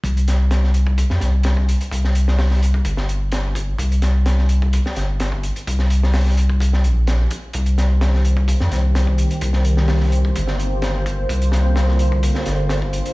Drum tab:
HH |xxx-x-x-x-x-x-xx|x-x-o-x-x-x-x-x-|xxx-x-x-x-x-x-xx|x-x-o-x-x-x-x-x-|
SD |--o-oo---oo-o---|-o-ooo---o--o---|--o-oo---oo-o---|-o-ooo---o--o---|
BD |o------oo----o--|o------oo-----o-|o------oo----o--|o------oo-----o-|

HH |xxx-x-x-x-x-x-xx|x-x-o-x-x-x-x-x-|xxx-x-x-x-x-x-xx|
SD |--o-oo---oo-o---|-o-ooo---o--o---|--o-oo---oo-o---|
BD |o------oo----o--|o------oo-----o-|o------oo----o--|